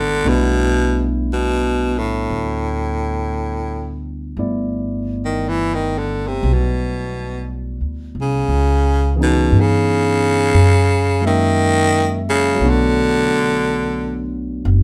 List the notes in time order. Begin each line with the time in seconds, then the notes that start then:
Already playing: G#1 D3 G3 A3 B3 D4 E4 F#4
0.24 B1 G3 A3 B3 D4 E4
0.28 B2
1.33 B2
1.99 A2
2.30 D2
4.37 G1 G3 A3 B3 E4 D5
5.25 D#3
5.49 E3
5.74 D#3
5.98 D3
6.27 C3
6.43 B1
6.53 B2
7.81 D2
8.15 C2
8.21 C#3
8.48 C#2
9.16 E3 B3 C#4 G#4
9.21 B2 D#4
9.52 G2
9.61 C#3
10.54 F#2
11.21 F#3 G#3 A#3 C#4
11.26 D#3 E5
12.30 C#3
12.54 F#3 A3
12.60 B1 B3 D4
12.66 D3 F#4
14.65 F#1